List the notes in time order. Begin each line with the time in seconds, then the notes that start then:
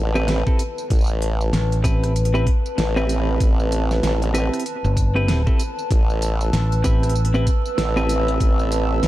Already playing: A1 B4 A5
0.15 C4 E4 G4 B4, tambourine
0.28 snare, closed hi-hat, tambourine
0.46 C4 E4 G4 A4, kick, tambourine
0.59 closed hi-hat, tambourine
0.78 tambourine
0.90 A1, kick, closed hi-hat, tambourine
0.93 tambourine
0.96 tambourine
0.99 tambourine
1.01 tambourine
1.04 tambourine
1.07 tambourine
1.09 tambourine
1.22 closed hi-hat, tambourine
1.41 tambourine
1.53 A1, snare, closed hi-hat, tambourine
1.72 closed hi-hat, tambourine
1.84 C4 E4 G4 B4, kick, closed hi-hat, tambourine
2.04 cross-stick, closed hi-hat, tambourine
2.16 closed hi-hat, tambourine
2.25 closed hi-hat
2.34 C4 E4 G4 B4, tambourine
2.47 kick, closed hi-hat
2.66 tambourine
2.78 A1, snare, closed hi-hat, tambourine
2.96 C4 E4 G4 B4, tambourine
3.09 closed hi-hat, tambourine
3.40 A1, kick, closed hi-hat, tambourine
3.60 tambourine
3.72 closed hi-hat, tambourine
3.91 snare, tambourine
4.03 A1, snare, closed hi-hat, tambourine
4.22 closed hi-hat, tambourine
4.34 C4 E4 G4 B4, closed hi-hat, tambourine
4.54 cross-stick, closed hi-hat, tambourine
4.60 closed hi-hat
4.66 closed hi-hat, tambourine
4.84 G1, tambourine
4.97 kick, closed hi-hat, tambourine
5.15 C4 E4 G4 B4
5.28 snare, closed hi-hat, tambourine
5.46 C4 E4 G4 A4, kick, tambourine
5.59 closed hi-hat, tambourine
5.78 tambourine
5.91 A1 E6, kick, closed hi-hat, tambourine
6.10 tambourine
6.22 closed hi-hat, tambourine
6.41 tambourine
6.53 A1, snare, closed hi-hat, tambourine
6.72 closed hi-hat, tambourine
6.84 C4 E4 G4 B4, kick, closed hi-hat, tambourine
7.03 cross-stick, closed hi-hat, tambourine
7.09 closed hi-hat
7.15 tambourine
7.25 closed hi-hat
7.34 C4 E4 G4 B4, tambourine
7.47 kick, closed hi-hat, tambourine
7.66 tambourine
7.78 A1, snare, closed hi-hat, tambourine
7.96 C4 E4 G4 B4, tambourine
8.09 closed hi-hat, tambourine
8.28 tambourine
8.40 A1, kick, closed hi-hat, tambourine
8.59 tambourine
8.72 closed hi-hat, tambourine
9.03 A1, snare, closed hi-hat, tambourine